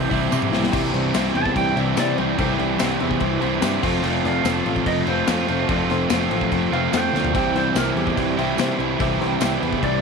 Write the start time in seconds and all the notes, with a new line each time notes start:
Already playing: C3 E3 G3 C4 C5
0.10 C2 G3 C4 E4 G4 C5, kick, open hi-hat
0.30 C3 E3 G3 C4 E4 G4 C5, high tom, tambourine
0.42 mid tom
0.52 C2 G3 C4 E4 G4 C5, snare
0.64 snare
0.72 C2 C3 E3 G3 C4 E4 G4 C5, kick, crash
0.93 C2 C4 E4 G4 C5, crash
1.13 C2 C3 E3 G3 C4 E4 G4 C5, snare, tambourine, crash
1.35 E2 C4 E4 G4 C5 A5, crash
1.46 kick
1.56 C2 C4 E4 G4 D5 G5, kick, crash
1.76 C2 G3 C4 E4 G4 D5 E5, crash
1.96 C3 E3 G3 C4 E4 G4 C5 D5, snare, tambourine, crash
2.17 C2 G3 C4 E4 G4 C5, crash
2.38 C2 C3 E3 G3 C4 E4 G4 A4, kick, crash
2.59 C2 C4 E4 G4 D5, crash
2.79 C2 C3 E3 G3 C4 E4 G4 C5, snare, tambourine, crash
3.00 E2 C4 E4 G4 C5, crash
3.11 kick
3.20 C2 C4 E4 G4 C5, kick, crash
3.40 C2 G3 C4 E4 G4 C5, crash
3.61 G2 C3 E3 G3 C4 E4 G4 C5, snare, tambourine, crash
3.82 F1 F3 A3 C4 F4 A4 C5, kick, crash
4.03 F1 F3 A3 C4 F4, crash
4.24 F1 C4 F4 A4 D5 F5, snare, crash
4.44 F1 F3 A3 C4 F4 A4 C5, snare, tambourine, crash
4.66 A1 C4 F4 A4 C5, crash
4.76 kick
4.86 F1 C4 F4 A4 B4 D#5, kick, crash
5.06 F1 A3 C4 F4 A4 B4 C5, crash
5.27 F2 F3 A3 C4 F4 A4 C5, snare, tambourine, crash
5.48 F1 A3 C4 F4 A4 C5, crash
5.69 F1 F3 A3 C4 F4 A4 D5, kick, crash
5.89 F1 C4 F4 A4 C5, snare, crash
6.10 F1 F3 A3 C4 F4 A4 C5, snare, tambourine, crash
6.31 A1 C4 F4 A4 C5, crash
6.41 kick
6.52 F1 C4 F4 A4 C5, kick, crash
6.72 F1 A3 C4 F4 A4 B4 F5, crash
6.92 F2 F3 A3 C4 F4 A4 C5 G5, snare, tambourine, crash
7.13 D2 A3 C4 F4 A4 C5, snare
7.25 floor tom
7.34 C2 C3 E3 G3 C4 E4 G4 C5 G5, kick, crash
7.54 C2 C4 E4 G4 C5, snare, crash
7.75 C2 C3 E3 G3 C4 E4 G4 A#4 C5, snare, tambourine, crash
7.96 E2 C4 E4 G4 A4, crash
8.07 kick
8.16 C2 C4 E4 G4 C5, kick, crash
8.37 C2 G3 C4 E4 G4 C5, crash
8.57 C3 E3 G3 C4 E4 G4 C5, snare, tambourine, crash
8.79 C2 G3 C4 E4 G4 C5, crash
8.99 C2 C3 E3 G3 C4 E4 G4 A4, kick, crash
9.21 C2 C4 E4 G4 C5 G5, snare, crash
9.41 C2 C3 E3 G3 C4 E4 G4 C5, snare, tambourine, crash
9.62 E2 C4 E4 G4 B4, crash
9.72 kick
9.83 C2 C4 E4 G4 C5 D5, kick, crash